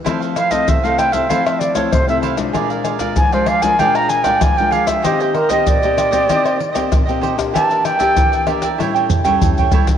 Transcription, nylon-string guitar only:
\new Staff \with { instrumentName = "Nylon-string guitar" } { \time 4/4 \key f \major \tempo 4 = 96 << { <a c' e'>8 r16 <a c' e'>8 <a c' e'>8 <a c' e'>16 <a c' e'>8. <a c' e'>8 <a c' e'>8 <aes d' f'>16~ | <aes d' f'>8. <aes d' f'>8 <aes d' f'>8 <aes d' f'>16 <aes d' f'>8. <aes d' f'>8 <aes d' f'>8. | <bes c' g'>8 r16 <bes c' g'>8 <bes c' g'>8 <bes c' g'>16 <bes c' g'>8 r16 <bes c' g'>8 <bes c' g'>8 <bes d' g'>16~ | <bes d' g'>8. <bes d' g'>8. <bes d' g'>16 r16 <g cis' e'>8 r16 <g cis' e'>8. <g cis' e'>16 r16 | } \\ { f4 c4 f4 c4 | bes,4 f4 bes,4 f4 | ees4 bes,4 ees4 bes,4 | e4 e4 a,4 e4 | } >> }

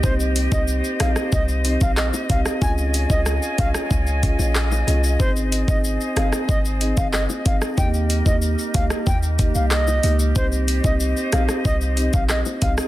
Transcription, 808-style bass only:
\new Staff \with { instrumentName = "808-style bass" } { \clef bass \time 4/4 \key c \phrygian \tempo 4 = 93 c,8. c,8 r16 bes,,16 r16 c,8. bes,,8 r16 c,16 r16 | des,8. des,8 r16 c,16 r16 des,8. bes,,8. c,8 | aes,,8. aes,,8 r16 g,,16 r16 aes,,8. g,,8 r16 aes,,16 r16 | ees,8. ees,8 r16 des,16 r16 ees,8. c,8. des,8 |
c,8. c,8 r16 bes,,16 r16 c,8. bes,,8 r16 c,16 r16 | }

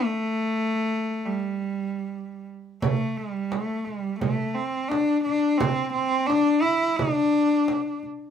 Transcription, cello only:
\new Staff \with { instrumentName = "Cello" } { \time 4/4 \tempo 4 = 86 a4.~ a16 g4.~ g16 r8 | a8 g8 a8 g8 a8 c'8 d'8 d'8 | c'8 c'8 d'8 e'8 d'4. r8 | }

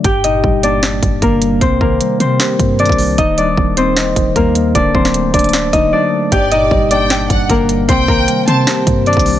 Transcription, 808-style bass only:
\new Staff \with { instrumentName = "808-style bass" } { \clef bass \time 4/4 \key g \minor \tempo 4 = 153 g,,4 g,,4. g,,8 g,,4 | c,8 c,8 r8 c8 r8 g,8. c,8. | ees,,4 ees,,4. ees,,8 ees,4 | d,,8 d,,4 d,,4 d,,8 r4 |
g,,4 g,,4. g,,8 g,,4 | c,8 c,8 r8 c8 r8 g,8. c,8. | }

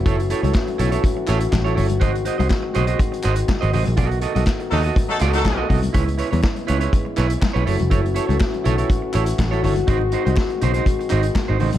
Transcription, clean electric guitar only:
\new Staff \with { instrumentName = "Clean electric guitar" } { \time 4/4 \key fis \dorian \tempo 4 = 122 <e' a' cis''>16 r16 <e' a' cis''>16 <e' a' cis''>16 r8 <e' a' cis''>16 <e' a' cis''>16 r8 <e' a' cis''>16 r8 <e' a' cis''>16 <e' a' cis''>16 r16 | <fis' bis' dis''>16 r16 <fis' bis' dis''>16 <fis' bis' dis''>16 r8 <fis' bis' dis''>16 <fis' bis' dis''>16 r8 <fis' bis' dis''>16 r8 <fis' bis' dis''>16 <fis' bis' dis''>16 r16 | <fis' a' dis''>8 <fis' a' dis''>16 <fis' a' dis''>16 r8 <fis' a' dis''>16 <fis' a' dis''>16 r8 <fis' a' dis''>8 r16 <fis' a' dis''>16 <fis' a' dis''>16 r16 | <e' b' cis''>16 r16 <e' b' cis''>16 <e' b' cis''>16 r8 <e' b' cis''>16 <e' b' cis''>16 r8 <e' b' cis''>16 r8 <e' b' cis''>16 <e' a' cis''>16 r16 |
<e' a' cis''>16 r16 <e' a' cis''>16 <e' a' cis''>16 r8 <e' a' cis''>16 <e' a' cis''>16 r8 <e' a' cis''>16 r8 <e' a' cis''>16 <e' a' cis''>16 r16 | <dis' fis' bis'>16 r16 <dis' fis' bis'>16 <dis' fis' bis'>16 r8 <dis' fis' bis'>16 <dis' fis' bis'>16 r8 <dis' fis' bis'>16 r8 <dis' fis' bis'>16 <dis' fis' bis'>16 r16 | }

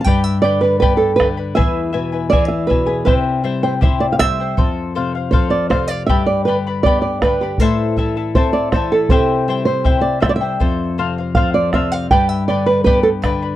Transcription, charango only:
\new Staff \with { instrumentName = "Charango" } { \time 2/4 \key c \major \tempo 4 = 80 <g' b' d'' g'' b''>8 <b' d'' g'' b''>16 <b' d'' b''>16 <g' b' d'' g'' b''>8 <b' d'' g'' b''>16 <b' d'' b''>16 | <e' gis' b' e'' gis''>8 <e' b' e'' gis''>16 <e' b' gis''>16 <e' gis' b' e'' gis''>8 <e' b' e'' gis''>16 <e' b' gis''>16 | <e' g' c'' e'' g''>8 <e' c'' e'' g''>16 <e' c'' g''>16 <e' g' c'' e'' g''>8 <e' c'' e'' g''>16 <e' c'' g''>16 | <a' c''>8 <a' c'' f''>16 <c'' f''>16 <a' c'' f''>8 <a' c'' f''>16 <c'' f''>16 |
<g' b' d'' g'' b''>8 <b' d'' g'' b''>16 <b' d'' b''>16 <g' b' d'' g'' b''>8 <b' d'' g'' b''>16 <b' d'' b''>16 | <e' a' c'' e'' a''>8 <e' a' e'' a''>16 <e' a' a''>16 <e' a' c'' e'' a''>8 <e' a' e'' a''>16 <e' a' a''>16 | <e' g' c'' e'' g''>8 <e' c'' e'' g''>16 <e' c'' g''>16 <e' g' c'' e'' g''>8 <e' c'' e'' g''>16 <e' c'' g''>16 | <a' c''>8 <a' c'' f''>16 <c'' f''>16 <a' c'' f''>8 <a' c'' f''>16 <c'' f''>16 |
<g' b' d'' g'' b''>8 <b' d'' g'' b''>16 <b' d'' b''>16 <g' b' d'' g'' b''>8 <b' d'' g'' b''>16 <b' d'' b''>16 | }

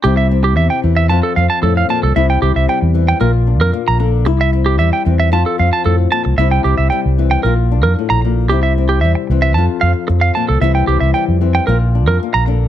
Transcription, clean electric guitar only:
\new Staff \with { instrumentName = "Clean electric guitar" } { \time 4/4 \key c \mixolydian \tempo 4 = 113 g'16 e''16 r16 g'16 e''16 g''16 r16 e''16 a''16 a'16 f''16 a''16 a'16 f''16 a''16 a'16 | e''16 g''16 g'16 e''16 g''16 r8 g''16 bes'16 r8 bes'16 r16 bes''16 r8 | r16 e''16 r16 g'16 e''16 g''16 r16 e''16 a''16 a'16 f''16 a''16 a'16 r16 a''16 r16 | e''16 g''16 g'16 e''16 g''16 r8 g''16 bes'16 r8 bes'16 r16 bes''16 r8 |
g'16 e''16 r16 g'16 e''16 r8 e''16 a''16 r16 f''16 r8 f''16 a''16 a'16 | e''16 g''16 g'16 e''16 g''16 r8 g''16 bes'16 r8 bes'16 r16 bes''16 r8 | }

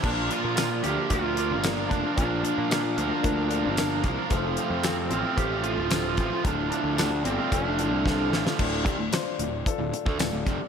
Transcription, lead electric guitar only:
\new Staff \with { instrumentName = "Lead electric guitar" } { \time 4/4 \key d \minor \tempo 4 = 112 d'8 f'8 f'8 g'8 f'4 r8 d'8 | d'2.~ d'8 r8 | r4 c'8 c'8 g'8 f'4. | d'8 d'8 d'8 c'8 d'4. r8 |
r1 | }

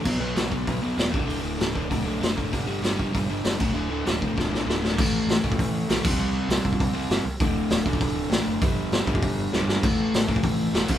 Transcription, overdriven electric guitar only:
\new Staff \with { instrumentName = "Overdriven electric guitar" } { \clef bass \time 4/4 \key d \major \tempo 4 = 197 <b, fis b>8 <b, fis b>8 <b, fis b>8 <b, fis b>8 <b, fis b>8 <b, fis b>8 <b, fis b>8 <d, a, d>8 | <d, a, d>8 <d, a, d>8 <d, a, d>8 <d, a, d>8 <d, a, d>8 <d, a, d>8 <d, a, d>8 <d, a, d>8 | <g, d g>8 <g, d g>8 <g, d g>8 <g, d g>8 <g, d g>8 <g, d g>8 <g, d g>8 <d, a, d>8 | <d, a, d>8 <d, a, d>8 <d, a, d>8 <d, a, d>8 <d, a, d>8 <d, a, d>8 <d, a, d>8 <d, a, d>8 |
<a, e a>4. <a, e a>4. <a, e a>8 <c g c'>8~ | <c g c'>4 <c g c'>4. <c g c'>4 r8 | <d, a, d>4. <d, a, d>4. <d, a, d>4 | <g, d g>4. <g, d g>4. <g, d g>4 |
<a, e a>4. <a, e a>4. <a, e a>8 <c g c'>8 | }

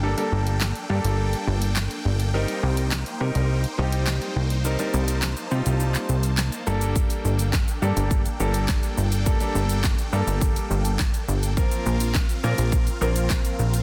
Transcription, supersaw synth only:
\new Staff \with { instrumentName = "Supersaw synth" } { \time 4/4 \key g \minor \tempo 4 = 104 << { g''1~ | g''1 | a''2.~ a''8 g''8~ | g''1~ |
g''1 | f''1 | } \\ { <bes d' a'>1 | <ees' c''>1~ | <ees' c''>2.~ <ees' c''>8 <d' a'>8~ | <d' a'>1~ |
<d' a'>1 | <c' f'>1 | } >> }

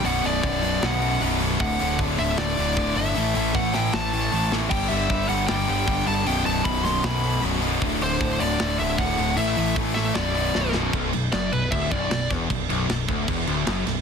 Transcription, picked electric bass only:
\new Staff \with { instrumentName = "Picked electric bass" } { \clef bass \time 4/4 \key b \minor \tempo 4 = 154 b,,,8 b,,,8 b,,,4 b,,4 b,,,4 | d,,8 d,,8 d,,8 d,,8 r8 d,,8 d,,8 g,,8 | a,,8 a,,8 a,,4 a,,4 a,,4 | g,,8 g,,8 g,,8 g,,8 g,,8 g,,8 g,,8 g,,8 |
b,,,8 b,,,8 b,,,4 b,,4 b,,,4 | d,,8 d,,8 d,,8 d,,8 d,,8 d,,8 d,,8 d,,8 | a,,8 a,,8 a,,4 b,,,4 b,,,4 | b,,,8 b,,,8 fis,,8 b,,,8 d,,8 b,,,8 b,,,8 e,,8 |
b,,,8 b,,,8 b,,,8 d,,8 e,,8 d,,8 fis,,8 b,,,8 | }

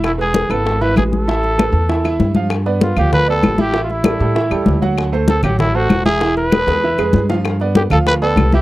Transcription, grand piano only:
\new Staff \with { instrumentName = "Grand piano" } { \time 4/4 \key a \minor \tempo 4 = 194 <e e' e''>8 <gis gis' b'>4 <b e' b'>4 <e e' e''>8 <gis gis' b'>4 | <e e' e''>4 <a a' b'>4 <e e' e''>8 <e e' e''>4 <f f' f''>8 | r8 <b b' d''>4 <f f' f''>4 <b b' d''>4 <e e' e''>8 | <e e' e''>4 <g g' a'>8 <g g' a'>8 <e e' e''>8 <g g' a'>4 <fis fis' fis''>8~ |
<fis fis' fis''>8 <a a' c''>4 <fis fis' fis''>4 <a a' c''>4 <e e' e''>8 | <e e' e''>4 <gis gis' b'>8 <gis gis' b'>8 <e e' e''>8 <gis gis' b'>4 <f f' f''>8~ | <f f' f''>8 <b b' d''>4 <f f' f''>4 <b b' d''>4 <e e' e''>8 | }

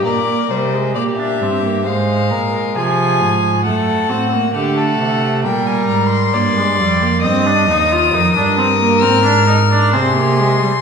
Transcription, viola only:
\new Staff \with { instrumentName = "Viola" } { \time 4/4 \key c \phrygian \tempo 4 = 67 bes8 g16 aes16 bes16 d'16 c'16 bes16 aes4 f4 | a8 c'16 bes16 a4 g4 bes16 aes16 g16 bes16 | \key ees \major c'16 d'16 ees'16 f'16 ees'16 d'16 c'16 bes16 c'16 d'16 ees'16 d'16 c'16 bes16 aes16 g16 | }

